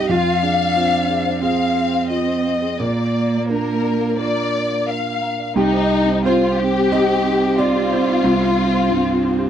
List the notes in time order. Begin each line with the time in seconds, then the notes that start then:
Already playing: G2 D#4 G4
0.09 F2 F4 F5
0.27 F5
0.42 D4 G#4
0.60 F5
0.76 C4 F4
1.10 G#4
1.26 C5
1.41 C4 F4 G#4 F5
1.59 F5
1.77 G#4
1.93 C5
2.10 F4 D#5
2.28 C5
2.45 F5
2.62 G#4
2.79 A#2 A#3 A#4 D5
2.97 A#5
3.14 D5
3.31 A#5
3.49 D4 A#4
3.84 D5
4.01 F5
4.18 F4 A#4 D5
4.36 A#5
4.53 D5
4.71 F5
4.87 A#4 F5
5.05 F5
5.22 A#5
5.39 D5
5.56 C2 C4 D#4 G4
5.73 C5
5.91 D#4
6.09 C5
6.25 C4 F4 C5
6.58 D#4 G4
6.76 G4
6.92 C4 D#4 G4 D#5
7.09 C5
7.27 D#4
7.43 G4
7.58 C4 F4 D5
7.76 G4
7.92 C5
8.08 D#4
8.24 C2 C4
8.41 C5
8.57 D#4
8.74 C5
8.89 G2 C4
9.22 D#4
9.39 G4